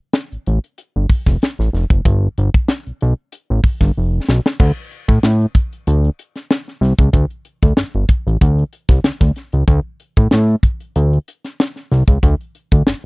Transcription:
0.13 snare, closed hi-hat
0.32 A1, closed hi-hat
0.47 A1, closed hi-hat
0.64 closed hi-hat
0.78 closed hi-hat
0.96 G1
1.10 kick, open hi-hat
1.26 F1, kick, snare
1.42 snare, closed hi-hat
1.59 A1, snare
1.73 F1, snare, closed hi-hat
1.90 F#1, kick
2.05 G1, kick, closed hi-hat
2.38 G1, closed hi-hat
2.54 kick
2.68 snare, closed hi-hat
2.86 B1, closed hi-hat
3.01 B1, closed hi-hat
3.32 closed hi-hat
3.50 A1
3.64 kick, open hi-hat
3.81 G1, kick, snare
3.98 F1
4.29 B1, snare
4.46 snare
4.60 D2, kick, crash
4.77 closed hi-hat
4.91 closed hi-hat
5.08 A2, kick, closed hi-hat
5.23 A2, snare
5.41 closed hi-hat
5.55 kick, closed hi-hat
5.73 closed hi-hat
5.87 D2, closed hi-hat
6.05 closed hi-hat
6.19 closed hi-hat
6.36 snare, closed hi-hat
6.51 snare
6.68 snare
6.81 C2, snare, closed hi-hat
6.99 C#2, kick, closed hi-hat
7.13 D2, kick, closed hi-hat
7.30 closed hi-hat
7.45 closed hi-hat
7.62 D2, kick, closed hi-hat
7.77 G1, snare
7.95 G1
8.09 kick, closed hi-hat
8.27 A1, closed hi-hat
8.41 D2, kick, closed hi-hat
8.59 closed hi-hat
8.73 closed hi-hat
8.89 C2, kick, snare, closed hi-hat
9.04 D2, snare
9.20 D2, kick, snare, closed hi-hat
9.36 snare, closed hi-hat
9.52 C#2, closed hi-hat
9.68 D2, kick, closed hi-hat
10.00 closed hi-hat
10.16 A2, kick, closed hi-hat
10.31 A2, snare
10.49 closed hi-hat
10.63 kick, closed hi-hat
10.80 closed hi-hat
10.96 D2, closed hi-hat
11.13 closed hi-hat
11.28 closed hi-hat
11.45 snare, closed hi-hat
11.60 snare
11.76 snare, closed hi-hat
11.91 C2, snare, closed hi-hat
12.08 C#2, kick, closed hi-hat
12.23 D2, kick, closed hi-hat
12.41 closed hi-hat
12.55 closed hi-hat
12.71 D2, kick, closed hi-hat
12.87 G1, snare

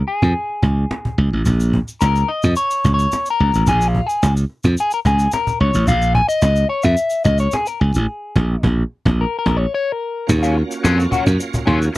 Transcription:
0.08 G#4, cajon slap
0.22 F2, cajon bass, cajon slap
0.35 cajon slap
0.49 cajon slap
0.63 C#2, cajon bass, cajon slap
0.91 cajon slap
1.05 cajon bass
1.18 C#2
1.33 A1
1.45 A#1, cajon bass, shaker
1.60 shaker
1.73 cajon bass
1.88 shaker
2.01 C#2 A#4, cajon slap, shaker
2.15 shaker
2.28 D#5, cajon slap
2.43 F2, cajon bass, cajon slap, shaker
2.56 C#5, cajon slap, shaker
2.71 cajon slap, shaker
2.84 C#2, cajon bass, cajon slap, shaker
2.94 C#5
2.99 shaker
3.12 cajon slap, shaker
3.26 cajon slap, shaker
3.30 A#4
3.40 C#2
3.54 A1, shaker
3.67 A#1 G#4, cajon bass, shaker
3.81 shaker
3.88 F4
3.94 cajon bass
4.06 G#4, shaker
4.23 C#2, cajon slap, shaker
4.37 shaker
4.50 cajon slap
4.64 F2, cajon bass, cajon slap, shaker
4.77 G#4, cajon slap, shaker
4.91 A#4, cajon slap, shaker
5.05 C#2 G#4, cajon bass, cajon slap, shaker
5.19 shaker
5.32 A#4, cajon slap, shaker
5.47 cajon bass, shaker
5.60 C#2 C#5
5.74 A1, shaker
5.87 A#1 F5, cajon bass, shaker
6.02 shaker
6.15 G#5, cajon bass
6.29 D#5, shaker
6.42 C#2, cajon slap, shaker
6.56 shaker
6.69 C#5, cajon slap
6.83 F2 E5, cajon bass, cajon slap, shaker
6.97 shaker
7.10 cajon slap, shaker
7.25 C#2 D#5, cajon bass, cajon slap, shaker
7.38 C#5, shaker
7.51 G#4, cajon slap, shaker
7.66 A#4, cajon slap, shaker
7.80 C#2 G#4
7.94 A1, shaker
8.36 A#1, cajon bass, cajon slap
8.63 A#1, cajon bass, cajon slap
9.05 A#1, cajon bass, cajon slap
9.21 A#4
9.39 A#4
9.46 A#1, cajon bass, cajon slap
9.57 C#5
9.74 C#5
9.92 A#4
10.27 D#2 A#3 C#4 F4 F#4, muted clean electric guitar stroke, cajon bass, shaker
10.43 F#3 C#4 F4, shaker
10.57 muted clean electric guitar stroke
10.71 muted clean electric guitar stroke, shaker
10.84 F2 F#3 C#4 F4, cajon slap, shaker
10.99 muted clean electric guitar stroke, shaker
11.11 F#3 C#4 F#4, cajon bass, cajon slap, shaker
11.26 F#2, muted clean electric guitar stroke, cajon bass, cajon slap, shaker
11.39 muted clean electric guitar stroke, cajon slap, shaker
11.54 muted clean electric guitar stroke, cajon bass, shaker
11.66 D#2 F#3 C#4 F4, cajon bass, cajon slap
11.80 muted clean electric guitar stroke, shaker
11.93 muted clean electric guitar stroke

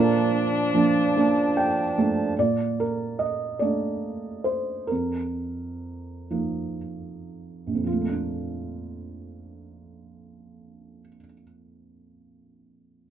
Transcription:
Already playing: A#2 F3 D4 F4 A#4 A5
0.74 F3 A#3 D4
1.16 A#3 D4
1.57 G5
1.98 A3 A#3 D4
2.39 A#2 D5
2.80 A#4
3.19 D#5
3.59 A3 A#3 D4 D5
4.44 C5
4.87 A#4
4.92 F2
6.30 F3 A#3 D#4
7.67 A#1
7.75 F2
7.84 F3 F4
7.93 A3
8.01 A#3
8.09 D4

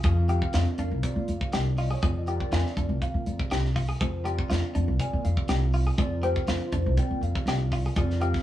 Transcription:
0.03 F2 C4 F4 G#4 A#4 F5, kick, closed hi-hat
0.28 C4 F4 G4 A#4 F5 G5, closed hi-hat
0.42 kick
0.53 F2 F4 D5, snare, closed hi-hat
0.78 F2 D4 F5, closed hi-hat
0.91 C2
1.03 C4 F4 A#4 D5, kick, closed hi-hat
1.16 A#2
1.28 F2, closed hi-hat
1.41 kick
1.53 C2 G4, snare, closed hi-hat
1.78 F4 D#5, open hi-hat
1.91 G#4 C#5
2.02 F2 C4 F4 G#4 A#4 D5, kick, closed hi-hat
2.18 D#5
2.27 C4 F4 G4 A#4 D5 F5, closed hi-hat
2.40 G5, kick
2.52 F2 F4 G#5, snare, closed hi-hat
2.66 F5, snare
2.77 F2 D4, kick, closed hi-hat
2.89 C2
3.01 C4 F4 A#4 F5, kick, closed hi-hat
3.14 A#2
3.26 F2 D5, closed hi-hat
3.39 kick
3.51 C2 G4, snare, closed hi-hat
3.65 snare
3.76 F4, kick, open hi-hat
3.89 G#4
4.00 F2 C4 F4 G#4 A#4 C5, kick, closed hi-hat
4.24 C4 F4 G4 A#4 D5, closed hi-hat
4.39 kick
4.50 F2 F4, snare, closed hi-hat
4.75 F2 D4, closed hi-hat
4.88 C2
4.99 C4 F4 A#4 D5 G#5, kick, closed hi-hat
5.13 A#2
5.25 F2 F5, closed hi-hat
5.37 kick
5.48 C2 G4, snare, closed hi-hat
5.73 F4, open hi-hat
5.87 G#4
5.98 F2 C4 F4 G#4 A#4 D5, kick, closed hi-hat
6.22 C4 F4 G4 A#4 C5, closed hi-hat
6.36 kick
6.47 F2 F4, snare, closed hi-hat
6.72 F2 D4, kick, closed hi-hat
6.86 C2
6.97 C4 F4 A#4 D5 G5, kick, closed hi-hat
7.11 A#2
7.21 F2 F5, closed hi-hat
7.35 kick
7.46 C2 G4, snare, closed hi-hat
7.72 F4, kick, open hi-hat
7.86 G#4
7.96 F2 C4 F4 G#4 A#4 D5, kick, closed hi-hat
8.10 snare
8.21 C4 F4 G4 A#4 F5, closed hi-hat
8.34 kick, snare

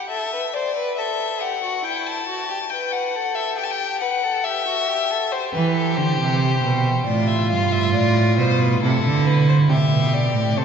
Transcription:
0.10 A4 E5
0.33 B4
0.54 C5 D5
0.76 B4
0.97 A4 E5
1.41 G4 F#5
1.63 F#4
1.84 E4 G5
2.07 A5
2.28 F#4
2.50 G4
2.70 B4 G5
2.92 F#5
3.16 A4
3.35 E5
3.57 G4 G5
3.64 A5
3.71 G5
4.01 B4 F#5
4.23 A4
4.44 G4 E5
4.67 F#4
4.88 G4
5.10 A4
5.32 G4 C5
5.54 E3 B4
5.75 A4
5.97 D3 C5
6.20 C3
6.64 B2
7.06 A2 F4 D5
7.28 E5
7.50 G2 F5
7.73 E5
7.94 A2 D5
8.39 B2 C5
8.60 B4
8.82 C3 E4 A4
9.05 D3
9.27 B4
9.49 C5
9.69 C3 G4 E5
9.92 B2
10.14 D5
10.36 A2
10.57 C3 A4 C5

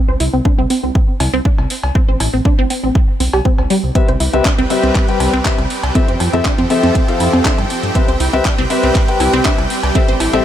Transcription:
0.08 C2 C5, high conga
0.20 C2 E4, open hi-hat
0.33 C2 C4
0.45 D4, kick, high conga
0.58 C2 C4
0.70 C4, open hi-hat
0.83 C2 C4, high conga
0.95 kick
1.20 C2 E4, open hi-hat, cowbell, high conga
1.33 C2 C4
1.45 D4, kick
1.58 C2, cowbell, high conga
1.70 open hi-hat
1.83 C2, cowbell
1.95 C4, kick
2.08 A1 C5, high conga
2.20 A1 E4, open hi-hat, cowbell
2.33 A1 C4
2.45 D4, kick, high conga
2.58 A1 C4
2.70 C4, open hi-hat
2.83 A1 C4, high conga
2.95 kick
3.20 B1 C4, open hi-hat, high conga
3.33 B1 G4, cowbell
3.45 C4, kick
3.58 C2 C4, cowbell, high conga
3.70 G3, open hi-hat
3.83 C2
3.95 G3 C4 G4 B4 E5 G5, kick, closed hi-hat
4.08 C2 C5, closed hi-hat, high conga
4.20 C2 E4, open hi-hat
4.33 C2 G3 C4 B4 E5, closed hi-hat
4.45 D4, kick, clap, closed hi-hat, high conga
4.58 C2 C4, closed hi-hat
4.70 G3 C4 B4 E5, open hi-hat
4.83 C2 C4, closed hi-hat, high conga
4.95 kick, clap, closed hi-hat
5.08 G3 C4 B4 G5, closed hi-hat
5.20 C2 E4, open hi-hat, cowbell, high conga
5.33 C2 C4, closed hi-hat
5.45 G3 C4 D4 B4 E5, kick, clap, closed hi-hat
5.58 C2, closed hi-hat, cowbell, high conga
5.70 open hi-hat
5.83 C2, closed hi-hat, cowbell
5.95 F3 C4 A4 E5, kick, closed hi-hat
6.08 F2 C5, closed hi-hat, high conga
6.20 F2 F4, open hi-hat, cowbell
6.33 F2 F3 C4 A4 E5, closed hi-hat
6.45 D4, kick, clap, closed hi-hat, high conga
6.58 F2 C4, closed hi-hat
6.70 F3 C4 A4 E5, open hi-hat
6.83 F2 C4, closed hi-hat, high conga
6.95 kick, closed hi-hat
7.08 F3 C4 A4 F5, closed hi-hat
7.20 F2 E4, open hi-hat, high conga
7.33 F2 C4, closed hi-hat, cowbell
7.45 F3 C4 D4 A4 E5, kick, clap, closed hi-hat
7.58 G2, closed hi-hat, cowbell, high conga
7.70 open hi-hat
7.83 G2, closed hi-hat
7.95 G3 C4 B4 E5, kick, closed hi-hat
8.08 C2 C5, closed hi-hat, high conga
8.20 C2 E4, open hi-hat
8.33 C2 G3 C4 B4 E5, closed hi-hat
8.45 D4, kick, clap, closed hi-hat, high conga
8.58 C2 C4, closed hi-hat
8.70 G3 C4 B4 E5, open hi-hat
8.83 C2 C4, closed hi-hat, high conga
8.95 kick, clap, closed hi-hat
9.08 G3 C4 B4 G5, closed hi-hat
9.20 C2 E4, open hi-hat, cowbell, high conga
9.33 C2 C4, closed hi-hat
9.45 G3 C4 D4 B4 E5, kick, clap, closed hi-hat
9.58 C2, closed hi-hat, cowbell, high conga
9.70 open hi-hat
9.83 C2, closed hi-hat, cowbell
9.95 G3 C4 A4 E5, kick, closed hi-hat
10.08 A1 C5, closed hi-hat, high conga
10.20 A1 E4, open hi-hat, cowbell
10.33 A1 G3 C4 A4 E5, closed hi-hat

